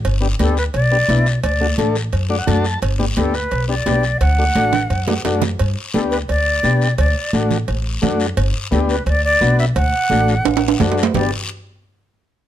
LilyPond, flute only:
\new Staff \with { instrumentName = "Flute" } { \time 4/4 \key g \major \tempo 4 = 173 r4 a'8 b'8 d''2 | d''4 r2. | r4 a'8 b'4 d''4. | fis''2. r4 |
r4 a'8 b'8 d''2 | d''4 r2. | r4 a'8 b'8 d''8 d''4 e''8 | fis''2.~ fis''8 r8 |
d''8 r2. r8 | }